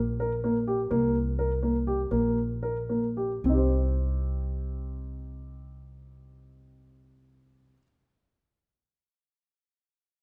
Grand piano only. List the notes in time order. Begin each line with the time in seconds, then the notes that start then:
0.20 A#4
0.44 A#3
0.67 G4
0.91 A#3
1.39 A#4
1.63 A#3
1.87 G4
2.11 A#3
2.63 A#4
2.89 A#3
3.17 G4
3.45 C4 D#4
3.53 G4 C5